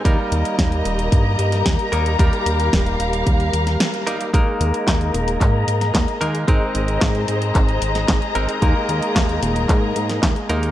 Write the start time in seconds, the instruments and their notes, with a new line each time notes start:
0.05 analog synth bass D#2, clean electric guitar G3 A#3 D#4 A#4, string section G4 A#4 D#5 A#5, kick, closed hi-hat
0.32 analog synth bass D#2, closed hi-hat
0.45 closed hi-hat
0.59 analog synth bass D#2, kick, snare, closed hi-hat
0.72 closed hi-hat
0.85 analog synth bass D#1, closed hi-hat
0.99 closed hi-hat
1.12 analog synth bass G2, kick, closed hi-hat
1.39 analog synth bass G2, closed hi-hat
1.52 snare, closed hi-hat
1.66 analog synth bass D#2, kick, snare, closed hi-hat
1.79 closed hi-hat
1.92 analog synth bass D#2, clean electric guitar G3 A#3 D#4 A#4, closed hi-hat
2.06 closed hi-hat
2.19 analog synth bass D#2, clean electric guitar G3 A#3 D#4 A#4, string section F5, kick, closed hi-hat
2.33 closed hi-hat
2.46 analog synth bass D#2, closed hi-hat
2.60 closed hi-hat
2.73 analog synth bass D#1, kick, snare, closed hi-hat
2.86 closed hi-hat
3.00 analog synth bass D#1, closed hi-hat
3.13 closed hi-hat
3.27 analog synth bass D#2, kick, closed hi-hat
3.40 closed hi-hat
3.53 analog synth bass D#2, closed hi-hat
3.67 snare, closed hi-hat
3.80 snare, closed hi-hat
3.94 closed hi-hat
4.07 clean electric guitar G3 A#3 D#4 A#4, closed hi-hat
4.21 closed hi-hat
4.33 analog synth bass D#2, clean electric guitar G#3 A#3 D#4 A#4, string section G#4 A#4 D#5 A#5, kick, closed hi-hat
4.60 analog synth bass D#2, closed hi-hat
4.74 closed hi-hat
4.87 analog synth bass D#2, kick, snare, clap, closed hi-hat
5.01 closed hi-hat
5.14 analog synth bass D#1, closed hi-hat
5.28 closed hi-hat
5.41 analog synth bass G#2, kick, clap, closed hi-hat
5.68 analog synth bass G#2, closed hi-hat
5.81 snare, closed hi-hat
5.94 analog synth bass D#2, kick, snare, clap, closed hi-hat
6.08 closed hi-hat
6.21 analog synth bass D#2, clean electric guitar G#3 A#3 D#4 A#4, closed hi-hat
6.35 closed hi-hat
6.48 analog synth bass G#1, clean electric guitar G#3 C4 D#4 A#4, string section C5 A#5, kick, closed hi-hat
6.75 analog synth bass G#1, closed hi-hat
6.88 closed hi-hat
7.01 analog synth bass G#2, kick, snare, clap, closed hi-hat
7.15 closed hi-hat
7.28 analog synth bass G#2, closed hi-hat
7.42 closed hi-hat
7.55 analog synth bass G#1, kick, clap, closed hi-hat
7.68 closed hi-hat
7.82 analog synth bass G#1, closed hi-hat
7.95 snare, closed hi-hat
8.08 analog synth bass G#1, kick, snare, clap, closed hi-hat
8.22 closed hi-hat
8.35 analog synth bass G#1, clean electric guitar G#3 C4 D#4 A#4, closed hi-hat
8.49 closed hi-hat
8.62 analog synth bass D#2, clean electric guitar G#3 A#3 D#4 A#4, string section A#4, kick, closed hi-hat
8.89 analog synth bass D#2, closed hi-hat
9.02 closed hi-hat
9.16 analog synth bass D#2, kick, snare, clap, closed hi-hat
9.29 closed hi-hat
9.42 analog synth bass D#1, closed hi-hat
9.56 closed hi-hat
9.69 analog synth bass G#2, kick, clap, closed hi-hat
9.96 analog synth bass G#2, closed hi-hat
10.09 snare, closed hi-hat
10.23 analog synth bass D#2, kick, snare, clap, closed hi-hat
10.36 closed hi-hat
10.49 analog synth bass D#2, clean electric guitar G#3 A#3 D#4 A#4, closed hi-hat
10.63 closed hi-hat